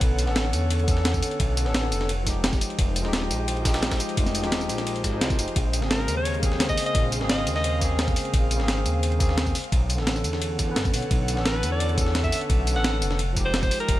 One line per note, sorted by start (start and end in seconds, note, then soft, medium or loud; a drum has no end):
0.00 0.29 B1 loud
0.00 0.24 D3 medium
0.00 0.26 B3 medium
0.00 0.29 C#4 medium
0.00 0.31 A4 medium
0.00 2.06 A4 medium
0.00 0.27 B4 medium
0.00 2.06 C#5 medium
0.00 2.06 F#5 medium
0.00 kick loud
0.00 closed hi-hat medium
0.00 ride medium
0.18 closed hi-hat medium
0.18 ride medium
0.18 tambourine medium
0.24 0.55 A1 medium
0.24 0.83 D3 medium
0.24 0.85 B3 medium
0.24 snare medium
0.29 0.86 C#4 medium
0.29 0.88 A4 medium
0.36 snare loud
0.36 closed hi-hat medium
0.36 ride medium
0.45 snare soft
0.53 1.21 E2 medium
0.53 closed hi-hat medium
0.53 ride medium
0.53 tambourine medium
0.70 closed hi-hat medium
0.70 ride medium
0.79 ride soft
0.84 1.61 D3 medium
0.84 1.63 B3 medium
0.84 kick loud
0.84 closed hi-hat medium
0.84 ride medium
0.84 tambourine medium
0.89 1.65 C#4 medium
0.89 1.66 A4 medium
0.97 snare medium
1.05 snare loud
1.05 closed hi-hat medium
1.05 ride medium
1.14 kick medium
1.14 tambourine soft
1.22 closed hi-hat medium
1.22 ride medium
1.22 tambourine medium
1.31 closed hi-hat soft
1.40 1.68 B1 loud
1.40 kick loud
1.40 closed hi-hat medium
1.40 ride medium
1.57 closed hi-hat medium
1.57 ride medium
1.57 tambourine medium
1.63 1.93 A1 medium
1.63 2.06 D3 medium
1.63 2.08 B3 medium
1.63 snare soft
1.67 2.09 C#4 medium
1.67 2.10 A4 medium
1.74 snare loud
1.74 closed hi-hat medium
1.74 ride medium
1.83 snare soft
1.92 2.60 F1 medium
1.92 closed hi-hat medium
1.92 ride medium
1.92 tambourine medium
2.01 snare medium
2.01 snare soft
2.09 9.51 G#3 medium
2.09 9.51 C5 medium
2.09 5.53 D#5 medium
2.09 5.53 G5 medium
2.09 closed hi-hat medium
2.09 ride medium
2.23 3.00 F3 medium
2.23 3.02 G#3 medium
2.23 kick medium
2.23 snare soft
2.23 closed hi-hat medium
2.23 ride medium
2.23 tambourine medium
2.28 3.03 D#4 medium
2.28 3.04 G4 medium
2.44 snare loud
2.44 closed hi-hat medium
2.44 ride medium
2.53 kick loud
2.53 snare soft
2.53 tambourine soft
2.61 closed hi-hat medium
2.61 ride medium
2.61 tambourine medium
2.70 closed hi-hat soft
2.79 3.06 F1 loud
2.79 kick loud
2.79 closed hi-hat loud
2.79 ride medium
2.96 closed hi-hat medium
2.96 ride medium
2.96 tambourine medium
3.01 3.32 D#1 medium
3.01 3.61 F3 medium
3.01 3.63 G#3 medium
3.01 snare soft
3.06 3.64 D#4 medium
3.06 3.65 G4 medium
3.13 snare loud
3.13 closed hi-hat medium
3.13 ride medium
3.22 snare soft
3.31 3.99 A#1 medium
3.31 closed hi-hat medium
3.31 ride medium
3.31 tambourine medium
3.48 closed hi-hat loud
3.48 ride medium
3.57 ride soft
3.62 4.39 F3 medium
3.62 4.41 G#3 medium
3.62 kick loud
3.62 snare loud
3.62 closed hi-hat medium
3.62 ride medium
3.62 tambourine medium
3.66 4.42 D#4 medium
3.66 4.43 G4 medium
3.74 snare loud
3.74 ride medium
3.83 snare loud
3.83 closed hi-hat loud
3.83 ride medium
3.91 kick medium
3.91 snare loud
3.91 ride medium
3.91 tambourine soft
4.00 closed hi-hat medium
4.00 ride medium
4.00 tambourine medium
4.09 closed hi-hat soft
4.17 4.45 F1 loud
4.17 kick loud
4.17 closed hi-hat loud
4.17 ride medium
4.26 snare soft
4.26 tambourine soft
4.35 closed hi-hat medium
4.35 ride medium
4.35 tambourine medium
4.40 4.71 D#1 medium
4.40 5.00 F3 medium
4.40 5.01 G#3 medium
4.40 snare soft
4.40 closed hi-hat soft
4.45 5.03 D#4 medium
4.45 5.04 G4 medium
4.52 snare loud
4.52 closed hi-hat loud
4.52 ride medium
4.61 snare soft
4.61 tambourine soft
4.69 5.06 A#1 medium
4.69 closed hi-hat medium
4.69 ride medium
4.69 tambourine medium
4.78 snare medium
4.78 snare soft
4.78 closed hi-hat soft
4.87 closed hi-hat loud
4.87 ride medium
4.96 closed hi-hat soft
5.04 5.23 G#1 loud
5.04 kick medium
5.04 snare soft
5.04 closed hi-hat medium
5.04 ride medium
5.04 tambourine medium
5.09 5.53 F3 medium
5.09 5.54 G#3 medium
5.14 5.56 D#4 medium
5.14 5.57 G#4 medium
5.21 5.40 C2 loud
5.21 snare loud
5.21 closed hi-hat loud
5.21 ride medium
5.30 kick loud
5.30 snare soft
5.30 tambourine soft
5.39 5.47 F1 medium
5.39 closed hi-hat medium
5.39 ride medium
5.39 tambourine medium
5.48 closed hi-hat soft
5.56 5.84 A#1 loud
5.56 9.51 F5 medium
5.56 kick loud
5.56 closed hi-hat loud
5.56 ride medium
5.73 closed hi-hat medium
5.73 ride medium
5.73 tambourine medium
5.79 6.10 G#1 medium
5.79 6.38 C#3 medium
5.79 6.40 A#3 medium
5.79 snare medium
5.83 6.41 C4 medium
5.83 6.43 G#4 medium
5.91 6.15 A#4 medium
5.91 snare loud
5.91 closed hi-hat loud
5.91 ride medium
6.00 snare soft
6.08 6.76 D#2 medium
6.08 closed hi-hat medium
6.08 ride medium
6.08 tambourine medium
6.17 6.38 C#5 medium
6.25 closed hi-hat loud
6.25 ride medium
6.34 ride soft
6.39 7.16 C#3 medium
6.39 7.18 A#3 medium
6.39 kick loud
6.39 closed hi-hat medium
6.39 ride medium
6.39 tambourine medium
6.44 7.19 C4 medium
6.44 7.21 G#4 medium
6.52 snare medium
6.60 snare loud
6.60 closed hi-hat loud
6.60 ride medium
6.69 6.85 D#5 loud
6.69 kick medium
6.69 tambourine soft
6.77 open hi-hat medium
6.77 ride medium
6.77 tambourine medium
6.86 7.07 D#5 loud
6.86 closed hi-hat soft
6.95 7.22 A#1 loud
6.95 kick loud
6.95 closed hi-hat loud
6.95 ride medium
7.12 closed hi-hat medium
7.12 ride medium
7.12 tambourine medium
7.18 7.48 G#1 medium
7.18 7.77 C#3 medium
7.18 7.79 A#3 medium
7.18 snare soft
7.22 7.80 C4 medium
7.22 7.81 G#4 medium
7.29 7.50 D#5 medium
7.29 snare loud
7.29 closed hi-hat medium
7.29 ride medium
7.38 snare soft
7.47 8.15 D#2 medium
7.47 closed hi-hat medium
7.47 ride medium
7.47 tambourine medium
7.56 7.81 D#5 loud
7.56 snare medium
7.56 snare soft
7.64 closed hi-hat medium
7.64 ride medium
7.78 8.55 C#3 medium
7.78 8.57 A#3 medium
7.78 kick medium
7.78 snare soft
7.78 closed hi-hat medium
7.78 ride medium
7.78 tambourine medium
7.83 8.58 C4 medium
7.83 8.59 G#4 medium
7.99 snare loud
7.99 closed hi-hat loud
7.99 ride medium
8.08 kick loud
8.08 snare soft
8.08 tambourine soft
8.16 open hi-hat medium
8.16 ride medium
8.16 tambourine medium
8.25 closed hi-hat soft
8.34 8.61 A#1 loud
8.34 kick loud
8.34 closed hi-hat medium
8.34 ride medium
8.51 closed hi-hat medium
8.51 ride medium
8.51 tambourine medium
8.56 8.87 G#1 medium
8.56 9.16 C#3 medium
8.56 9.18 A#3 medium
8.56 snare medium
8.61 9.19 C4 medium
8.61 9.20 G#4 loud
8.68 snare loud
8.68 closed hi-hat medium
8.68 ride medium
8.77 snare soft
8.86 9.54 D#2 medium
8.86 closed hi-hat medium
8.86 ride medium
8.86 tambourine medium
9.03 closed hi-hat medium
9.03 ride medium
9.12 ride soft
9.19 9.53 C#3 medium
9.19 9.54 A#3 medium
9.19 9.54 C4 medium
9.19 9.55 G#4 medium
9.19 kick loud
9.19 closed hi-hat medium
9.19 ride medium
9.19 tambourine medium
9.29 snare soft
9.38 snare loud
9.38 closed hi-hat medium
9.38 ride medium
9.46 kick medium
9.46 tambourine soft
9.55 13.15 A4 medium
9.55 13.15 C#5 medium
9.55 13.15 F#5 medium
9.55 open hi-hat medium
9.55 ride medium
9.55 tambourine medium
9.64 closed hi-hat soft
9.72 10.00 B1 loud
9.72 kick loud
9.72 closed hi-hat medium
9.72 ride medium
9.90 closed hi-hat medium
9.90 ride medium
9.90 tambourine medium
9.95 10.26 A1 medium
9.95 10.55 D3 medium
9.95 10.56 B3 medium
9.95 snare soft
10.00 10.57 C#4 medium
10.00 10.59 A4 medium
10.07 snare loud
10.07 closed hi-hat medium
10.07 ride medium
10.16 snare soft
10.16 tambourine soft
10.24 10.78 E2 medium
10.24 closed hi-hat medium
10.24 ride medium
10.24 tambourine medium
10.33 snare medium
10.33 snare soft
10.42 closed hi-hat medium
10.42 ride medium
10.59 kick medium
10.59 snare soft
10.59 closed hi-hat medium
10.59 ride medium
10.59 tambourine medium
10.64 11.33 D3 medium
10.64 11.35 B3 medium
10.69 11.36 C#4 medium
10.69 11.37 B4 medium
10.76 10.95 F#1 medium
10.76 snare loud
10.76 closed hi-hat medium
10.76 ride medium
10.85 kick loud
10.85 snare soft
10.85 tambourine soft
10.94 11.02 B1 medium
10.94 open hi-hat medium
10.94 ride medium
10.94 tambourine medium
11.02 closed hi-hat soft
11.11 11.39 B1 loud
11.11 kick loud
11.11 closed hi-hat medium
11.11 ride medium
11.28 closed hi-hat medium
11.28 ride medium
11.28 tambourine medium
11.34 11.64 A1 medium
11.34 11.93 D3 medium
11.34 11.95 B3 medium
11.34 snare soft
11.38 11.96 C#4 medium
11.38 11.97 A4 medium
11.46 11.70 B4 medium
11.46 snare loud
11.46 closed hi-hat medium
11.46 ride medium
11.54 snare soft
11.63 12.31 E2 medium
11.63 closed hi-hat medium
11.63 ride medium
11.63 tambourine medium
11.72 11.93 D5 loud
11.80 closed hi-hat medium
11.80 ride medium
11.89 ride soft
11.94 12.71 D3 medium
11.94 12.73 B3 medium
11.94 kick loud
11.94 closed hi-hat medium
11.94 ride medium
11.94 tambourine medium
11.99 12.74 C#4 medium
11.99 12.76 A4 medium
12.06 snare medium
12.15 snare loud
12.15 closed hi-hat medium
12.15 ride medium
12.24 12.39 E5 medium
12.24 kick medium
12.24 tambourine soft
12.32 open hi-hat medium
12.32 ride medium
12.32 tambourine medium
12.41 closed hi-hat soft
12.50 12.77 B1 loud
12.50 kick loud
12.50 closed hi-hat medium
12.50 ride medium
12.67 closed hi-hat medium
12.67 ride medium
12.67 tambourine medium
12.73 13.03 A1 medium
12.73 13.16 D3 medium
12.73 13.18 B3 medium
12.73 12.97 F#5 medium
12.73 snare soft
12.77 13.19 C#4 medium
12.77 13.20 A4 medium
12.84 snare loud
12.84 closed hi-hat medium
12.84 ride medium
12.93 snare soft
13.02 13.70 F1 medium
13.02 closed hi-hat medium
13.02 ride medium
13.02 tambourine medium
13.11 snare medium
13.11 snare soft
13.19 14.00 G#3 medium
13.19 14.00 C5 medium
13.19 14.00 D#5 medium
13.19 14.00 G5 medium
13.19 closed hi-hat medium
13.19 ride medium
13.33 14.00 F3 medium
13.33 14.00 G#3 medium
13.33 kick medium
13.33 snare soft
13.33 closed hi-hat medium
13.33 ride medium
13.33 tambourine medium
13.37 14.00 D#4 medium
13.37 14.00 G4 medium
13.45 13.61 C5 medium
13.54 snare loud
13.54 closed hi-hat medium
13.54 ride medium
13.63 13.78 C5 medium
13.63 kick loud
13.63 snare soft
13.63 tambourine soft
13.71 open hi-hat medium
13.71 ride medium
13.71 tambourine medium
13.80 14.00 A#4 medium
13.80 closed hi-hat soft
13.88 14.00 F1 loud
13.88 kick loud
13.88 closed hi-hat loud
13.88 ride medium